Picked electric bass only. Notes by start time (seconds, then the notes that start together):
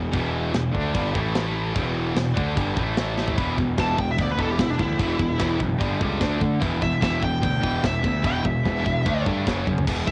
Already playing: E1
0.14 E1
0.54 E1
0.74 D2
0.95 G1
1.15 A1
1.76 E1
2.15 E1
2.37 D2
2.57 G1
2.77 A1
3.38 E1
3.59 E1
3.77 E1
3.98 E1
4.19 D2
4.39 E1
4.60 E1
4.80 D2
4.99 E1
5.19 E1
5.40 E1
5.60 F#1
5.80 G1
6.01 C#2
6.21 D2
6.42 D3
6.62 E1
6.82 E1
7.02 E1
7.22 E1
7.43 D2
7.63 E1
7.84 E1
8.04 D2
8.24 E1
8.45 E1
8.66 E1
8.86 E1
9.06 D2
9.26 G2
9.47 F#1
9.67 F#2
9.87 E1
10.07 E1